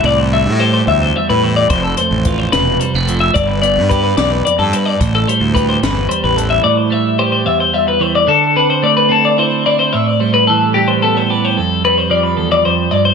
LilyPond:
<<
  \new Staff \with { instrumentName = "Clean electric guitar" } { \time 6/8 \key a \minor \tempo 4. = 73 d''16 c''16 e''8 c''16 c''16 e''16 c''16 e''16 b'16 c''16 d''16 | c''16 a'16 c''8 b'16 c''16 b'8 c''16 b'16 a'16 e''16 | d''16 b'16 d''8 b'16 b'16 d''16 b'16 d''16 a'16 b'16 d''16 | c''16 a'16 c''8 b'16 c''16 b'8 c''16 b'16 a'16 e''16 |
d''16 c''16 e''8 c''16 c''16 e''16 c''16 e''16 b'16 c''16 d''16 | a'8 b'16 c''16 d''16 b'16 a'16 d''16 c''8 d''16 c''16 | e''16 d''16 c''16 b'16 a'8 g'16 c''16 a'16 c''16 b'16 c''16 | a'8 b'16 c''16 d''16 b'16 a'16 d''16 c''8 d''16 c''16 | }
  \new Staff \with { instrumentName = "Clean electric guitar" } { \clef bass \time 6/8 \key a \minor << { g8 g8 g'4 g4 | r8 a8 f'4 g16 a8. | r8 b8 g'2 | r8 g8 g'4 g4~ |
g8 g8 g'4 g4 | r8 c'4 c'8 e'8 e'8~ | e'8 g4 g8 b8 g'8 | r8 g2~ g8 | } \\ { a,4. e,4 e8 | f,4. c4 f8 | g,4. e,8 f,8 g,8 | a,4. e,4 e8 |
a,4. e,4 e8 | d4 a2 | a,4 e2 | f,4 f8 e,8 f,8 g,8 | } >> }
  \new Staff \with { instrumentName = "Fingered electric bass" } { \clef bass \time 6/8 \key a \minor c,8. a,8. d,8 r16 a,8. | f,,8 r16 a,,8. e,,8 r16 f,,8. | g,,8. g,8. b,,8 r16 g,8. | a,,8 r16 d,8. g,,8 r16 a,,8. |
r2. | r2. | r2. | r2. | }
  \new DrumStaff \with { instrumentName = "Drums" } \drummode { \time 6/8 r4. r4. | <hh bd>8 hh8 <hh bd>8 <hh sn>8 hh8 hh8 | <hh bd>8 hh8 <hh bd>8 <hh sn>8 hh8 hh8 | <hh bd>8 hh8 <hh bd>8 <hh sn>8 hh8 hh8 |
r4. r4. | r4. r4. | r4. r4. | r4. r4. | }
>>